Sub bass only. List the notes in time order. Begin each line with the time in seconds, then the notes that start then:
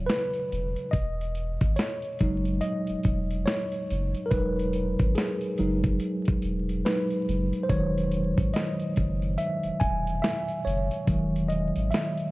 0.52 E1
0.94 E1
1.62 G#1
2.21 F#1
2.90 E1
3.05 E1
3.91 F#1
4.32 E1
5.00 G#1
5.60 F#1
6.29 E1
6.44 E1
7.29 F#1
7.70 E1
8.38 G#1
8.98 F#1
9.65 E1
9.82 E1
10.66 F#1
11.08 E1
11.77 G#1